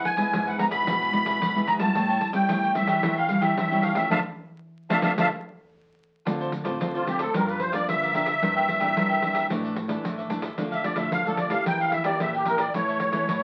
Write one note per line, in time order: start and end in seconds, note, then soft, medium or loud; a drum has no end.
0.00 0.31 G#2 medium
0.00 0.14 G#3 medium
0.00 0.15 B3 medium
0.00 0.15 E4 medium
0.05 0.48 G#5 loud
0.05 muted cavaquinho stroke soft
0.05 pandeiro medium
0.17 0.55 G#3 medium
0.17 0.55 B3 medium
0.17 0.55 E4 medium
0.17 0.32 G#4 medium
0.17 0.31 B4 medium
0.17 0.31 E5 medium
0.17 pandeiro medium
0.32 0.67 G#2 medium
0.32 0.85 G#2 medium
0.32 0.45 E4 medium
0.32 0.46 G#4 medium
0.32 0.46 B4 medium
0.32 0.45 E5 medium
0.32 pandeiro medium
0.46 0.71 G#4 medium
0.46 0.70 B4 medium
0.46 0.70 E5 medium
0.46 0.61 F#5 medium
0.46 pandeiro soft
0.59 1.09 G#3 soft
0.59 1.10 B3 medium
0.59 1.10 E4 medium
0.59 0.65 A#5 medium
0.59 pandeiro medium
0.71 0.84 B2 medium
0.71 0.86 G#4 medium
0.71 0.85 B4 medium
0.71 0.85 E5 medium
0.71 1.70 B5 loud
0.71 pandeiro medium
0.86 1.39 G#2 medium
0.86 1.22 B2 medium
0.86 1.00 E4 soft
0.86 1.00 G#4 medium
0.86 1.00 B4 medium
0.86 1.00 E5 medium
0.86 pandeiro medium
1.01 1.12 G#4 medium
1.01 1.12 B4 medium
1.01 1.13 E5 medium
1.01 pandeiro soft
1.12 1.39 G#3 medium
1.12 1.39 B3 medium
1.12 1.39 E4 medium
1.12 muted cavaquinho stroke soft
1.12 pandeiro medium
1.25 1.38 B2 medium
1.25 1.53 G#4 medium
1.25 1.53 B4 medium
1.25 1.53 E5 medium
1.25 pandeiro medium
1.41 1.93 G#2 medium
1.41 1.76 B2 medium
1.41 pandeiro medium
1.55 1.78 G#3 medium
1.55 1.78 B3 medium
1.55 1.78 E4 medium
1.55 1.66 G#4 medium
1.55 1.66 B4 medium
1.55 1.67 E5 medium
1.55 pandeiro soft
1.67 1.80 E4 medium
1.67 1.80 G#4 medium
1.67 1.79 B4 medium
1.67 1.78 E5 medium
1.67 1.74 A#5 loud
1.67 pandeiro medium
1.79 1.92 F#2 medium
1.79 2.30 G3 medium
1.79 2.30 C#4 medium
1.79 2.31 E4 medium
1.79 1.94 G#4 soft
1.79 1.94 B4 soft
1.79 1.93 E5 medium
1.79 2.31 A5 loud
1.79 pandeiro medium
1.95 2.46 A2 medium
1.95 2.18 A2 loud
1.95 2.08 G4 medium
1.95 2.08 A4 medium
1.95 2.08 C#5 medium
1.95 2.08 G5 medium
1.95 pandeiro medium
2.09 2.20 A4 medium
2.09 2.20 C#5 medium
2.09 2.20 G5 medium
2.09 pandeiro soft
2.21 muted cavaquinho stroke soft
2.21 pandeiro medium
2.33 2.71 G3 medium
2.33 2.71 C#4 medium
2.33 2.71 E4 medium
2.33 2.48 A4 medium
2.33 2.47 C#5 medium
2.33 2.47 G5 medium
2.33 2.72 G5 medium
2.33 pandeiro medium
2.49 2.83 A2 medium
2.49 3.00 E3 medium
2.49 2.62 G4 soft
2.49 2.62 A4 medium
2.49 2.62 C#5 medium
2.49 2.62 G5 medium
2.49 pandeiro medium
2.63 2.88 A4 medium
2.63 2.88 C#5 medium
2.63 2.87 G5 medium
2.63 pandeiro soft
2.75 3.11 G3 medium
2.75 3.11 C#4 medium
2.75 3.11 E4 medium
2.75 3.17 E5 medium
2.75 pandeiro medium
2.87 3.00 E3 medium
2.87 3.02 A4 medium
2.87 3.02 C#5 medium
2.87 3.01 G5 medium
2.87 pandeiro medium
3.03 3.54 A2 medium
3.03 3.38 E3 loud
3.03 3.16 G4 medium
3.03 3.16 A4 medium
3.03 3.16 C#5 medium
3.03 3.16 G5 medium
3.03 pandeiro medium
3.17 3.28 A4 medium
3.17 3.29 C#5 medium
3.17 3.42 F5 medium
3.17 3.29 G5 medium
3.17 pandeiro soft
3.29 3.66 G3 medium
3.29 3.66 C#4 medium
3.29 3.66 E4 medium
3.29 muted cavaquinho stroke soft
3.29 pandeiro medium
3.41 3.54 E3 medium
3.41 3.69 A4 medium
3.41 3.69 C#5 medium
3.41 3.56 E5 medium
3.41 3.68 G5 medium
3.41 pandeiro medium
3.57 4.08 E3 medium
3.57 3.91 E3 medium
3.57 3.85 E5 medium
3.57 pandeiro medium
3.71 3.94 G3 medium
3.71 3.94 C#4 medium
3.71 3.94 E4 medium
3.71 3.82 A4 medium
3.71 3.82 C#5 medium
3.71 3.83 G5 medium
3.71 pandeiro soft
3.82 3.95 G4 medium
3.82 3.95 A4 medium
3.82 3.94 C#5 medium
3.82 3.97 F5 medium
3.82 3.94 G5 medium
3.82 pandeiro medium
3.95 4.07 C#3 medium
3.95 4.09 F3 medium
3.95 4.09 A3 medium
3.95 4.10 E4 medium
3.95 4.09 A4 soft
3.95 4.09 C#5 soft
3.95 4.10 E5 medium
3.95 4.09 G5 soft
3.95 pandeiro medium
4.10 4.21 D3 medium
4.10 4.19 F3 loud
4.10 4.19 A3 medium
4.10 4.19 D4 loud
4.10 4.20 F4 medium
4.10 4.20 A4 medium
4.10 4.20 D5 medium
4.10 4.20 E5 medium
4.10 4.20 F5 loud
4.10 4.20 A5 medium
4.10 pandeiro medium
4.90 5.01 D3 medium
4.90 4.99 F3 medium
4.90 4.99 A3 medium
4.90 4.99 D4 medium
4.90 5.00 F4 medium
4.90 4.99 A4 medium
4.90 5.00 D5 medium
4.90 5.00 E5 loud
4.90 5.00 F5 medium
4.90 5.00 A5 medium
4.90 pandeiro loud
5.02 5.14 D3 medium
5.02 5.13 F3 medium
5.02 5.13 A3 medium
5.02 5.13 D4 medium
5.02 5.12 F4 medium
5.02 5.12 A4 medium
5.02 5.12 D5 medium
5.02 5.13 E5 medium
5.02 5.12 F5 medium
5.02 5.13 A5 medium
5.02 pandeiro loud
5.18 5.29 D3 loud
5.18 5.28 F3 loud
5.18 5.28 A3 loud
5.18 5.28 D4 medium
5.18 5.27 F4 medium
5.18 5.27 A4 medium
5.18 5.27 D5 medium
5.18 5.28 E5 medium
5.18 5.28 F5 loud
5.18 5.28 A5 loud
5.18 pandeiro loud
6.25 6.78 D3 medium
6.25 6.61 D3 medium
6.25 6.52 A3 medium
6.25 6.52 C4 soft
6.25 6.38 F4 soft
6.25 6.52 F4 medium
6.25 6.39 A4 soft
6.25 6.39 C5 soft
6.25 6.39 D5 medium
6.25 pandeiro medium
6.40 6.50 A4 medium
6.40 6.51 C5 medium
6.40 6.51 D5 medium
6.40 pandeiro soft
6.52 muted cavaquinho stroke soft
6.52 pandeiro medium
6.64 6.77 A2 medium
6.64 7.02 A3 medium
6.64 7.02 C4 medium
6.64 7.02 F4 medium
6.64 6.79 A4 medium
6.64 6.78 C5 medium
6.64 6.78 D5 medium
6.64 pandeiro medium
6.80 7.32 A2 medium
6.80 7.26 D3 medium
6.80 6.93 F4 soft
6.80 6.93 A4 soft
6.80 6.93 C5 soft
6.80 6.93 D5 soft
6.80 pandeiro medium
6.94 7.08 F4 medium
6.94 7.19 A4 medium
6.94 7.18 C5 medium
6.94 7.17 D5 medium
6.94 pandeiro soft
7.06 7.22 A3 soft
7.06 7.23 C4 medium
7.06 7.23 F4 medium
7.06 7.21 G4 medium
7.06 pandeiro medium
7.19 7.33 A4 medium
7.19 7.34 A4 medium
7.19 7.33 C5 medium
7.19 7.32 D5 medium
7.19 pandeiro medium
7.34 7.80 G2 medium
7.34 7.86 G2 medium
7.34 7.71 F3 medium
7.34 7.71 A#3 medium
7.34 7.71 D4 medium
7.34 7.47 G4 soft
7.34 7.47 A#4 soft
7.34 7.48 A#4 medium
7.34 7.47 D5 medium
7.34 7.47 F5 medium
7.34 pandeiro medium
7.48 7.59 A#4 medium
7.48 7.62 B4 medium
7.48 7.59 D5 medium
7.48 7.59 F5 medium
7.48 pandeiro soft
7.60 7.74 C5 medium
7.60 pandeiro medium
7.72 8.10 F3 medium
7.72 8.10 A#3 medium
7.72 8.11 D4 medium
7.72 8.00 A#4 medium
7.72 8.00 D5 medium
7.72 7.87 D5 medium
7.72 7.99 F5 medium
7.72 pandeiro medium
7.88 8.34 G2 medium
7.88 8.40 D3 medium
7.88 9.47 E5 loud
7.88 pandeiro medium
8.02 8.13 A#4 medium
8.02 8.14 D5 medium
8.02 8.14 F5 medium
8.02 pandeiro soft
8.14 8.31 F3 medium
8.14 8.31 A#3 medium
8.14 8.31 D4 medium
8.14 8.27 G4 medium
8.14 8.26 A#4 medium
8.14 8.26 D5 medium
8.14 8.25 F5 medium
8.14 pandeiro medium
8.26 8.41 A#4 soft
8.26 8.40 D5 soft
8.26 8.40 F5 medium
8.26 pandeiro medium
8.42 8.77 G2 loud
8.42 8.94 G2 medium
8.42 8.79 E3 soft
8.42 8.79 A#3 medium
8.42 8.55 D4 medium
8.42 8.79 D4 medium
8.42 8.55 A#4 soft
8.42 8.55 E5 soft
8.42 8.55 G5 medium
8.42 pandeiro medium
8.56 8.67 A#4 medium
8.56 8.67 E5 medium
8.56 8.67 G5 medium
8.56 pandeiro soft
8.68 muted cavaquinho stroke soft
8.68 pandeiro medium
8.80 8.93 A#2 medium
8.80 9.18 E3 medium
8.80 9.18 A#3 medium
8.80 9.18 D4 medium
8.80 8.95 A#4 medium
8.80 8.94 E5 medium
8.80 8.94 G5 medium
8.80 pandeiro medium
8.96 9.42 G2 medium
8.96 9.48 G2 medium
8.96 9.08 D4 soft
8.96 9.09 A#4 soft
8.96 9.09 E5 soft
8.96 9.08 G5 soft
8.96 pandeiro medium
9.09 9.33 A#4 medium
9.09 9.33 E5 medium
9.09 9.32 G5 medium
9.09 pandeiro soft
9.22 9.45 E3 medium
9.22 9.46 A#3 medium
9.22 9.46 D4 medium
9.22 pandeiro medium
9.33 9.48 A#4 medium
9.33 9.48 E5 medium
9.33 9.48 G5 medium
9.33 pandeiro medium
9.49 9.96 A2 medium
9.49 10.02 A2 medium
9.49 9.76 E3 medium
9.49 9.76 A3 medium
9.49 9.62 D4 soft
9.49 9.76 D4 medium
9.49 9.63 A4 soft
9.49 9.63 D5 soft
9.49 9.62 E5 medium
9.49 pandeiro medium
9.63 9.74 A4 medium
9.63 9.75 D5 medium
9.63 9.75 E5 medium
9.63 pandeiro soft
9.75 muted cavaquinho stroke soft
9.75 pandeiro medium
9.88 10.03 E3 medium
9.88 10.26 A3 medium
9.88 10.26 D4 medium
9.88 10.16 A4 medium
9.88 10.16 D5 medium
9.88 10.15 E5 medium
9.88 pandeiro medium
10.04 10.50 A2 medium
10.04 10.29 E3 medium
10.04 pandeiro medium
10.18 10.29 A4 medium
10.18 10.29 D5 medium
10.18 10.30 E5 medium
10.18 pandeiro soft
10.29 10.47 E3 medium
10.29 10.47 A3 soft
10.29 10.43 D4 medium
10.29 10.47 D4 medium
10.29 10.43 A4 medium
10.29 10.42 D5 medium
10.29 10.41 E5 medium
10.29 pandeiro medium
10.42 10.57 A4 soft
10.42 10.57 D5 soft
10.42 10.56 E5 soft
10.42 pandeiro medium
10.57 11.10 D3 medium
10.57 10.93 D3 loud
10.57 10.74 F3 medium
10.57 10.74 A3 medium
10.57 10.70 D4 medium
10.57 10.75 D4 medium
10.57 10.71 A4 soft
10.57 10.71 D5 medium
10.57 10.71 F5 medium
10.57 pandeiro medium
10.72 10.83 A4 medium
10.72 10.83 D5 medium
10.72 10.86 E5 medium
10.72 10.83 F5 medium
10.72 pandeiro soft
10.84 11.21 F3 medium
10.84 11.21 A3 medium
10.84 11.21 D4 medium
10.84 10.98 D5 medium
10.84 pandeiro medium
10.96 11.09 A2 medium
10.96 11.11 A4 medium
10.96 11.10 D5 medium
10.96 11.11 E5 medium
10.96 11.10 F5 medium
10.96 pandeiro medium
11.11 11.63 A2 medium
11.11 11.58 D3 medium
11.11 11.25 D4 medium
11.11 11.25 A4 medium
11.11 11.25 D5 medium
11.11 11.26 F5 loud
11.11 11.24 F5 medium
11.11 pandeiro medium
11.26 11.49 F3 medium
11.26 11.49 A3 medium
11.26 11.49 D4 medium
11.26 11.39 A4 medium
11.26 11.50 A4 medium
11.26 11.50 D5 medium
11.26 11.49 F5 medium
11.26 pandeiro soft
11.37 11.52 D5 medium
11.37 pandeiro medium
11.50 12.01 A#3 medium
11.50 12.02 E4 medium
11.50 12.02 G4 medium
11.50 11.65 A4 medium
11.50 11.64 D5 medium
11.50 11.64 F5 medium
11.50 11.65 F5 medium
11.50 pandeiro medium
11.66 12.17 E3 medium
11.66 12.12 E3 medium
11.66 11.79 G4 soft
11.66 11.79 A#4 medium
11.66 11.79 E5 soft
11.66 11.80 G5 loud
11.66 11.79 G5 medium
11.66 pandeiro medium
11.80 11.91 A#4 medium
11.80 11.91 E5 medium
11.80 11.93 F5 medium
11.80 11.92 G5 medium
11.80 pandeiro soft
11.92 12.06 E5 loud
11.92 muted cavaquinho stroke soft
11.92 pandeiro medium
12.04 12.42 A#3 medium
12.04 12.42 E4 medium
12.04 12.42 G4 medium
12.04 12.32 A#4 medium
12.04 12.19 D5 medium
12.04 12.32 E5 medium
12.04 12.32 G5 medium
12.04 pandeiro medium
12.20 12.66 A#2 medium
12.20 12.72 E3 medium
12.20 12.34 E5 loud
12.20 pandeiro medium
12.34 12.48 G4 medium
12.34 12.45 A#4 soft
12.34 12.45 E5 medium
12.34 12.46 G5 medium
12.34 pandeiro soft
12.45 12.63 A#3 soft
12.45 12.63 E4 medium
12.45 12.59 G4 medium
12.45 12.63 G4 medium
12.45 12.58 A#4 medium
12.45 12.60 A#4 medium
12.45 12.58 E5 medium
12.45 12.56 G5 medium
12.45 pandeiro medium
12.58 12.73 A#4 soft
12.58 12.73 D5 medium
12.58 12.72 E5 soft
12.58 12.72 G5 medium
12.58 pandeiro medium
12.74 13.25 A2 medium
12.74 13.09 A2 loud
12.74 13.10 E3 medium
12.74 13.11 A3 medium
12.74 13.11 C#4 medium
12.74 12.87 E4 soft
12.74 12.87 A4 soft
12.74 13.43 C#5 medium
12.74 12.87 C#5 medium
12.74 12.87 E5 medium
12.74 pandeiro medium
12.88 12.99 A4 medium
12.88 12.99 C#5 medium
12.88 12.99 E5 medium
12.88 pandeiro soft
13.00 muted cavaquinho stroke soft
13.00 pandeiro medium
13.12 13.25 E3 medium
13.12 13.27 E3 medium
13.12 13.43 A3 medium
13.12 13.43 C#4 medium
13.12 13.26 A4 medium
13.12 13.26 C#5 medium
13.12 13.26 E5 medium
13.12 pandeiro medium
13.28 13.43 A2 medium
13.28 13.43 E3 medium
13.28 13.40 E4 soft
13.28 13.41 A4 medium
13.28 13.41 C#5 medium
13.28 13.41 E5 medium
13.28 pandeiro medium